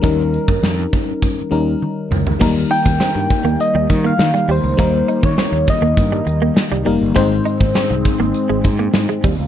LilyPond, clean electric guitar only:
\new Staff \with { instrumentName = "Clean electric guitar" } { \time 4/4 \key ees \mixolydian \tempo 4 = 101 r1 | bes16 r16 ees'16 r16 c'16 r8 bes16 r16 g16 r16 bes16 r16 g16 g16 r16 | bes16 r16 ees'16 r16 c'16 r8 bes16 r16 g16 r16 bes16 r16 g16 g16 r16 | c'16 r16 ees'16 r16 c'16 r8 bes16 r16 aes16 r16 bes16 r16 aes16 g16 r16 | }